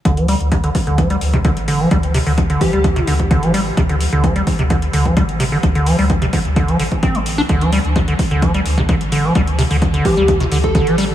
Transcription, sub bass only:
\new Staff \with { instrumentName = "Sub bass" } { \clef bass \time 4/4 \key d \minor \tempo 4 = 129 d,8. d,8. r16 d,8. d,8. a,,8. | d,8. d,8. r16 d,8. d,8. a,,8. | d,8. d,8. r16 d,8. d,8. a,,8. | d,8. d,8. r16 d,8. a,,16 r8 a,,8. |
d,8. d,8. r16 d,8. d,8. a,,8. | d,8. d,8. r16 d,8. d,8. a,,8. | }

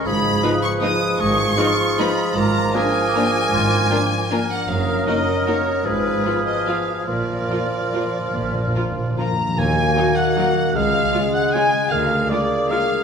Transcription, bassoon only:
\new Staff \with { instrumentName = "Bassoon" } { \clef bass \time 3/4 \key bes \phrygian \tempo 4 = 152 f2.~ | f2. | f2.~ | f2~ f8 r8 |
ges2. | f2. | f2.~ | f2~ f8 r8 |
bes2. | aes2. | bes2. | }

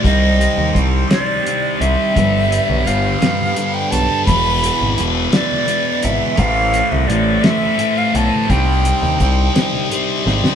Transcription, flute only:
\new Staff \with { instrumentName = "Flute" } { \time 6/8 \key c \major \tempo 4. = 57 ees''4 r8 d''4 e''8~ | e''4 f''4~ f''16 g''16 a''8 | b''4 r8 d''4 e''8 | f''8. e''16 d''8 e''8. f''16 a''8 |
g''2 r4 | }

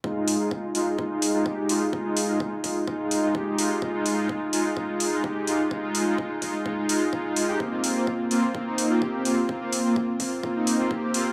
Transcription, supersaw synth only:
\new Staff \with { instrumentName = "Supersaw synth" } { \time 4/4 \key f \minor \tempo 4 = 127 <aes ees' f'>16 <aes ees' f'>8 <aes ees' f'>16 <aes ees' f'>16 r16 <aes ees' f'>16 r16 <aes ees' f'>16 <aes ees' f'>8 <aes ees' f'>16 <aes ees' g'>8 <aes ees' f'>16 r16 | <aes ees' f'>16 <aes ees' f'>8 <aes ees' f'>16 <aes ees' f'>16 r16 <aes ees' f'>16 r16 <aes ees' f'>16 <aes ees' f'>8 <aes ees' f'>16 <aes ees' g'>8 <aes ees' f'>16 r16 | <aes ees' f'>16 <aes ees' f'>8 <aes ees' f'>16 <aes ees' f'>16 r16 <aes ees' f'>16 r16 <aes ees' f'>16 <aes ees' f'>8 <aes ees' f'>16 <aes ees' g'>8 <aes ees' f'>16 r16 | <aes ees' f'>16 <aes ees' f'>8 <aes ees' f'>16 <aes ees' f'>16 r16 <aes ees' f'>16 r16 <aes ees' f'>16 <aes ees' f'>16 <aes ees' f'>16 r16 <aes ees' f'>8 <aes ees' f'>16 <aes ees' g'>16 |
<bes c' f'>16 <bes c' f'>8 <bes c' f'>16 <bes c' f'>16 r16 <bes c' f'>16 r16 <bes c' f'>16 <bes c' ees'>8 <bes c' f'>16 <bes c' g'>8 <bes c' f'>16 r16 | <bes c' f'>16 <bes c' f'>8 <bes c' f'>16 <bes c' f'>16 r16 <bes c' f'>16 r16 <bes c' f'>16 <bes c' ees'>8 <bes c' f'>16 <bes c' g'>8 <bes c' f'>16 r16 | }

